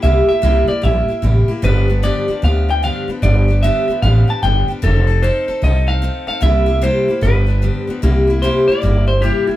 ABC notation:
X:1
M:4/4
L:1/8
Q:"Swing" 1/4=150
K:Gdor
V:1 name="Clean electric guitar"
e e2 d e3 z | =B2 d2 f g f z | d2 e2 f a g z | A2 c2 _e f2 f |
e2 c2 =B3 z | z2 c d2 c G E |]
V:2 name="Steel-string acoustic guitar"
[C,G,B,EG] [B,EG] [C,G,B,EG] [B,EG] [G,B,EG] [B,EG] [C,G,B,EG] [B,EG] | [G,,D,F,=B,DG] [F,B,DG] [G,,D,F,B,DG] [F,B,DG] [F,B,DG] [F,B,DG] [G,,D,F,B,DG] [F,B,DG] | [G,,D,F,=B,DG] [F,B,DG] [G,,D,F,B,DG] [F,B,DG] [F,B,DG] [F,B,DG] [G,,D,F,B,DG] [F,B,DG] | [F,C_EA] [CEA] [F,CEA] [CEA] [F,CEA] [CEA] [F,CEA] [CEA] |
[C,G,B,EG] [B,EG] [C,G,B,EG] [B,EG] [F,=B,DG] [F,B,DG] [G,,D,F,B,DG] [F,B,DG] | [C,G,B,EG] [B,EG] [C,G,B,EG] [B,EG] [G,B,EG] [B,EG] [C,G,B,EG] [B,EG] |]
V:3 name="Upright bass" clef=bass
C,, z C,, z B,,, z A,,, z | G,,,3 z D,,3 z | G,,,3 z A,,, z G,,, z | F,,,3 z C,,3 z |
C,,3 z G,,,3 z | C,,3 z G,,,3 z |]